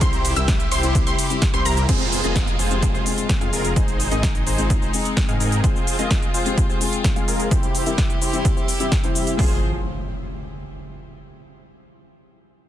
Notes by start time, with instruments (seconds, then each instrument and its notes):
Already playing: string section C4
0.01 detuned saw bass C2, string section C3 E4 G4, grand piano G3 C4 E4 G4, supersaw synth E4 G4 C5, synth pluck C6, kick, closed hi-hat, shaker
0.13 closed hi-hat, shaker
0.25 open hi-hat, ride, shaker
0.36 detuned saw bass C2, grand piano G3 C4 E4 A#4, supersaw synth E4 G4 E5, synth pluck E6, closed hi-hat, shaker
0.48 kick, snare, closed hi-hat, shaker
0.60 closed hi-hat, shaker
0.72 detuned saw bass C2, supersaw synth E4 G4 C5, synth pluck C6, open hi-hat, ride, shaker
0.83 grand piano G3 C4 E4 G4, closed hi-hat, shaker
0.95 kick, closed hi-hat, shaker
1.07 detuned saw bass C2, supersaw synth E4 G4 C5, synth pluck C6, closed hi-hat, shaker
1.18 open hi-hat, ride, shaker
1.30 grand piano G3 C4 E4 G4, closed hi-hat, shaker
1.42 kick, snare, closed hi-hat, shaker
1.53 detuned saw bass C2, grand piano G3 C4 E4 C5, supersaw synth E4 G4 C5, synth pluck C6, closed hi-hat, shaker
1.65 detuned saw bass C2, supersaw synth E4 G4 A#4, synth pluck A#5, open hi-hat, ride, shaker
1.77 closed hi-hat, shaker
1.88 detuned saw bass F1, grand piano G#3 C4 F4 G#4, string section G#3 C4 F4, supersaw synth F4 G#4 C5, kick, closed hi-hat, crash, downlifter, shaker
2.01 shaker
2.12 open hi-hat, shaker
2.23 detuned saw bass F1, grand piano G#3 C4 F4 A#4, supersaw synth F4 G#4 D#5, closed hi-hat, shaker
2.36 kick, snare, closed hi-hat, shaker
2.47 closed hi-hat, shaker
2.59 detuned saw bass F1, supersaw synth F4 G#4 C5, open hi-hat, shaker
2.70 grand piano G#3 C4 F4 G4, closed hi-hat, shaker
2.83 kick, closed hi-hat, shaker
2.94 detuned saw bass F1, supersaw synth F4 G#4 C5, shaker
3.05 grand piano G#3 C4 F4 G#4, open hi-hat, shaker
3.18 closed hi-hat, shaker
3.29 kick, snare, closed hi-hat, shaker
3.41 detuned saw bass F2, grand piano G#3 C4 F4 G#4, supersaw synth F4 G#4 F5, closed hi-hat, shaker
3.53 detuned saw bass F1, supersaw synth F4 G#4 A#4, open hi-hat, shaker
3.65 closed hi-hat, shaker
3.76 detuned saw bass G#1, grand piano G#3 C4 D#4 G#4, supersaw synth D#4 G#4 C5, string section D#4, kick, closed hi-hat, shaker
3.88 closed hi-hat, shaker
4.00 open hi-hat, shaker
4.11 detuned saw bass G#1, grand piano G#3 C4 D#4 A#4, supersaw synth D#4 G#4 D#5, closed hi-hat, shaker
4.23 kick, snare, closed hi-hat, shaker
4.35 closed hi-hat, shaker
4.47 detuned saw bass G#1, supersaw synth D#4 G#4 C5, open hi-hat, shaker
4.58 grand piano G#3 C4 D#4 F4, closed hi-hat, shaker
4.70 kick, closed hi-hat, shaker
4.82 detuned saw bass G#1, supersaw synth D#4 G#4 C5, shaker
4.93 grand piano G#3 C4 D#4 G#4, open hi-hat, shaker
5.05 closed hi-hat, shaker
5.17 kick, snare, closed hi-hat, shaker
5.28 detuned saw bass G#2, grand piano G#3 C4 D#4 G#4, supersaw synth D#4 G#4 F5, closed hi-hat, shaker
5.40 detuned saw bass G#2, supersaw synth D#4 G#4 A#4, open hi-hat, shaker
5.52 closed hi-hat, shaker
5.63 grand piano G#3 C4 F4 G#4, supersaw synth F4 G#4 C5, string section F4, kick, closed hi-hat, shaker
5.76 shaker
5.87 open hi-hat, shaker
5.98 grand piano G#3 C4 F4 A#4, supersaw synth F4 G#4 D#5, closed hi-hat, shaker
6.11 kick, snare, closed hi-hat, shaker
6.22 closed hi-hat, shaker
6.34 supersaw synth F4 G#4 C5, open hi-hat, shaker
6.45 grand piano G#3 C4 F4 G4, closed hi-hat, shaker
6.58 kick, closed hi-hat, shaker
6.69 supersaw synth F4 G#4 C5, shaker
6.80 grand piano G#3 C4 F4 G#4, open hi-hat, shaker
6.93 closed hi-hat, shaker
7.04 kick, snare, closed hi-hat, shaker
7.15 grand piano G#3 C4 F4 G#4, supersaw synth F4 G#4 F5, closed hi-hat, shaker
7.28 supersaw synth F4 G#4 A#4, open hi-hat, shaker
7.40 closed hi-hat, shaker
7.51 string section C3 E4 G4, grand piano G3 C4 E4 G4, supersaw synth E4 G4, kick, closed hi-hat, shaker
7.63 closed hi-hat, shaker
7.75 open hi-hat, shaker
7.86 grand piano G3 C4 E4 A#4, supersaw synth E4 G4 E5, closed hi-hat, shaker
7.98 kick, snare, closed hi-hat, shaker
8.10 closed hi-hat, shaker
8.22 supersaw synth E4 G4 C5, open hi-hat, shaker
8.33 grand piano G3 C4 E4 G4, closed hi-hat, shaker
8.45 kick, closed hi-hat, shaker
8.57 supersaw synth E4 G4 C5, shaker
8.68 open hi-hat, shaker
8.79 grand piano G3 C4 E4 G4, supersaw synth E4 G4 E5, closed hi-hat, shaker
8.92 kick, snare, closed hi-hat, shaker
9.03 grand piano G3 C4 E4 C5, supersaw synth E4 G4 E5, closed hi-hat, shaker
9.15 open hi-hat, shaker
9.27 closed hi-hat, shaker
9.37 detuned saw bass F1, string section F3 F4 G#4 C5, grand piano G#3 C4 F4 G#4, supersaw synth F4 G#4 C5, kick, open hi-hat, impact